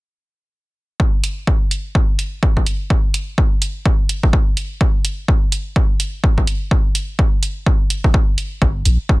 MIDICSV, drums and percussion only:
0, 0, Header, 1, 2, 480
1, 0, Start_track
1, 0, Key_signature, -2, "minor"
1, 0, Tempo, 476190
1, 1006, Time_signature, 4, 2, 24, 8
1, 9274, End_track
2, 0, Start_track
2, 0, Title_t, "Drums"
2, 1006, Note_on_c, 9, 36, 111
2, 1106, Note_off_c, 9, 36, 0
2, 1246, Note_on_c, 9, 42, 85
2, 1346, Note_off_c, 9, 42, 0
2, 1486, Note_on_c, 9, 36, 112
2, 1586, Note_off_c, 9, 36, 0
2, 1726, Note_on_c, 9, 42, 84
2, 1826, Note_off_c, 9, 42, 0
2, 1966, Note_on_c, 9, 36, 113
2, 2067, Note_off_c, 9, 36, 0
2, 2206, Note_on_c, 9, 42, 82
2, 2306, Note_off_c, 9, 42, 0
2, 2446, Note_on_c, 9, 36, 112
2, 2547, Note_off_c, 9, 36, 0
2, 2588, Note_on_c, 9, 36, 57
2, 2686, Note_on_c, 9, 42, 86
2, 2689, Note_off_c, 9, 36, 0
2, 2787, Note_off_c, 9, 42, 0
2, 2926, Note_on_c, 9, 36, 117
2, 3027, Note_off_c, 9, 36, 0
2, 3166, Note_on_c, 9, 42, 84
2, 3267, Note_off_c, 9, 42, 0
2, 3406, Note_on_c, 9, 36, 115
2, 3507, Note_off_c, 9, 36, 0
2, 3646, Note_on_c, 9, 42, 91
2, 3747, Note_off_c, 9, 42, 0
2, 3886, Note_on_c, 9, 36, 112
2, 3987, Note_off_c, 9, 36, 0
2, 4126, Note_on_c, 9, 42, 91
2, 4227, Note_off_c, 9, 42, 0
2, 4268, Note_on_c, 9, 36, 58
2, 4366, Note_off_c, 9, 36, 0
2, 4366, Note_on_c, 9, 36, 116
2, 4467, Note_off_c, 9, 36, 0
2, 4606, Note_on_c, 9, 42, 90
2, 4707, Note_off_c, 9, 42, 0
2, 4846, Note_on_c, 9, 36, 122
2, 4947, Note_off_c, 9, 36, 0
2, 5086, Note_on_c, 9, 42, 90
2, 5187, Note_off_c, 9, 42, 0
2, 5326, Note_on_c, 9, 36, 116
2, 5427, Note_off_c, 9, 36, 0
2, 5566, Note_on_c, 9, 42, 86
2, 5667, Note_off_c, 9, 42, 0
2, 5806, Note_on_c, 9, 36, 122
2, 5907, Note_off_c, 9, 36, 0
2, 6046, Note_on_c, 9, 42, 93
2, 6147, Note_off_c, 9, 42, 0
2, 6286, Note_on_c, 9, 36, 119
2, 6387, Note_off_c, 9, 36, 0
2, 6428, Note_on_c, 9, 36, 58
2, 6526, Note_on_c, 9, 42, 91
2, 6529, Note_off_c, 9, 36, 0
2, 6627, Note_off_c, 9, 42, 0
2, 6766, Note_on_c, 9, 36, 117
2, 6867, Note_off_c, 9, 36, 0
2, 7006, Note_on_c, 9, 42, 91
2, 7106, Note_off_c, 9, 42, 0
2, 7246, Note_on_c, 9, 36, 119
2, 7347, Note_off_c, 9, 36, 0
2, 7486, Note_on_c, 9, 42, 88
2, 7587, Note_off_c, 9, 42, 0
2, 7726, Note_on_c, 9, 36, 115
2, 7826, Note_off_c, 9, 36, 0
2, 7966, Note_on_c, 9, 42, 87
2, 8066, Note_off_c, 9, 42, 0
2, 8108, Note_on_c, 9, 36, 60
2, 8206, Note_off_c, 9, 36, 0
2, 8206, Note_on_c, 9, 36, 116
2, 8306, Note_off_c, 9, 36, 0
2, 8445, Note_on_c, 9, 42, 90
2, 8546, Note_off_c, 9, 42, 0
2, 8685, Note_on_c, 9, 36, 113
2, 8786, Note_off_c, 9, 36, 0
2, 8925, Note_on_c, 9, 42, 91
2, 9026, Note_off_c, 9, 42, 0
2, 9165, Note_on_c, 9, 36, 108
2, 9266, Note_off_c, 9, 36, 0
2, 9274, End_track
0, 0, End_of_file